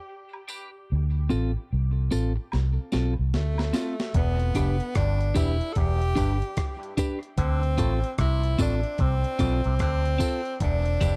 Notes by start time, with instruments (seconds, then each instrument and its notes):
Already playing: tenor saxophone G4
0.33 high woodblock
0.48 clean electric guitar D4 G4 B4, tambourine
0.92 fingered electric bass D2
1.30 fingered electric bass A1, clean electric guitar C4 F4 A4, tambourine
1.73 fingered electric bass C2
2.11 fingered electric bass A1, clean electric guitar C4 F4 A4, tambourine
2.36 muted clean electric guitar stroke
2.52 fingered electric bass C2, snare, high woodblock
2.92 fingered electric bass B1, clean electric guitar C4 F4 A4, snare, tambourine
3.19 fingered electric bass C2
3.34 fingered electric bass D2, tenor saxophone A3, snare
3.58 snare, high woodblock
3.73 clean electric guitar C4 F4 A4, snare, tambourine
4.00 snare
4.14 fingered electric bass E1, clav E2, tenor saxophone B3, kick, closed hi-hat
4.40 closed hi-hat
4.55 fingered electric bass F1, clav F2, clean electric guitar D4 G4 B4, kick, closed hi-hat, tambourine
4.80 closed hi-hat
4.95 fingered electric bass G1, clav G2, tenor saxophone D4, kick, cross-stick, closed hi-hat
5.21 closed hi-hat
5.35 fingered electric bass E1, clav E2, clean electric guitar D4 G4 B4, tenor saxophone E4, kick, closed hi-hat, tambourine
5.61 closed hi-hat
5.73 fingered electric bass E1, clav E2, tenor saxophone A4, kick, closed hi-hat
5.78 tenor saxophone G4
6.02 closed hi-hat
6.16 fingered electric bass G1, clav G2, clean electric guitar D4 G4 B4, kick, closed hi-hat, tambourine
6.42 closed hi-hat
6.57 kick, cross-stick, closed hi-hat
6.83 closed hi-hat
6.97 clean electric guitar D4 G4 B4, kick, closed hi-hat, tambourine
7.23 closed hi-hat
7.38 fingered electric bass D2, clav D3, tenor saxophone C4, kick, closed hi-hat
7.63 closed hi-hat
7.78 fingered electric bass A1, clav A2, clean electric guitar C4 F4 A4, kick, closed hi-hat, tambourine
8.04 closed hi-hat
8.18 fingered electric bass C2, clav C3, tenor saxophone E4, kick, cross-stick, closed hi-hat
8.43 closed hi-hat
8.58 fingered electric bass A1, clav A2, clean electric guitar C4 F4 A4, tenor saxophone D4, kick, closed hi-hat, tambourine
8.83 closed hi-hat
8.98 fingered electric bass C2, clav C3, tenor saxophone C4, kick, closed hi-hat
9.24 closed hi-hat
9.39 fingered electric bass B1, clav B2, clean electric guitar C4 F4 A4, kick, closed hi-hat, tambourine
9.64 fingered electric bass C2, clav C3, closed hi-hat
9.79 fingered electric bass D2, clav D3, tenor saxophone C4, kick, cross-stick, closed hi-hat
10.05 closed hi-hat
10.18 clean electric guitar C4 F4 A4, kick, closed hi-hat, tambourine
10.45 closed hi-hat
10.60 fingered electric bass E1, clav E2, tenor saxophone D4, kick, closed hi-hat
10.85 closed hi-hat
11.01 fingered electric bass F1, clav F2, clean electric guitar D4 G4 B4, kick, closed hi-hat, tambourine